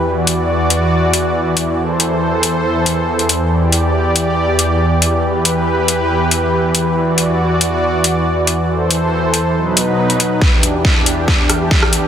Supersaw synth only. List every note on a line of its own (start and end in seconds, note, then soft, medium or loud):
0.00 5.20 E3 medium
0.06 9.51 E2 medium
0.06 1.77 F#4 medium
0.06 1.77 D5 medium
1.78 3.49 A4 medium
1.78 3.49 C5 medium
3.51 5.22 G4 medium
3.51 5.22 D5 medium
5.24 8.66 E3 medium
5.24 6.95 G4 medium
5.24 6.95 B4 medium
6.96 8.67 F#4 medium
6.96 8.67 D5 medium
8.69 9.54 E3 medium
8.69 9.54 A4 medium
8.69 9.54 C5 medium
9.55 10.41 B2 medium
9.55 10.41 F#3 medium
9.55 10.41 D#4 medium
9.55 10.41 B4 medium
10.42 12.08 E2 medium
10.42 12.08 E3 medium
10.42 12.08 D4 medium
10.42 12.08 G4 medium